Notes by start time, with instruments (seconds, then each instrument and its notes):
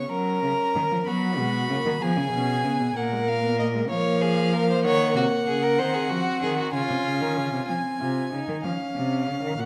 Already playing: viola B3, violin C#6
0.11 cello F#3, viola C#4, violin A#4 A#5
0.43 cello C#3
0.75 cello D#3
0.91 cello F3
1.06 cello F#3, viola B3, violin F#4 B5
1.38 cello B2, viola G#3
1.70 cello C#3, viola A#3
1.86 cello D#3
2.01 cello F3, viola B3, violin G#4 G#5
2.17 cello C#3
2.33 cello B2, viola C#4
2.64 cello C#3, viola B3
2.80 cello B2
2.96 cello A#2, viola A#3, violin A#4 F#5
3.12 viola G#3
3.27 viola A#3, violin F5
3.43 viola B3
3.59 viola A#3, violin D#5
3.75 viola G#3
3.90 cello F3, viola A#3, violin C#5 F5
4.22 violin G#4
4.54 violin A#4
4.70 violin C5
4.84 cello D#3, violin C#5 F#5
5.16 cello C3, violin F#4
5.47 cello C#3, violin G#4
5.63 violin A#4
5.79 cello D#3, viola C4, violin C5
5.94 violin G#4
6.10 cello F3, violin F#4
6.42 cello D#3, violin G#4
6.58 violin F#4
6.73 cello C#3, viola C#4, violin F4 G#5
6.89 cello C3
7.05 cello C#3
7.21 cello D#3
7.37 cello C#3
7.53 cello C3
7.69 cello F3, viola C4, violin G#5
8.01 cello C3, viola F4
8.33 cello C#3, viola D#4
8.48 cello D#3
8.64 cello F3, viola C#4, violin F5
8.96 cello C3
9.27 cello C#3
9.43 cello D#3
9.59 cello A#2, viola F#4, violin F#5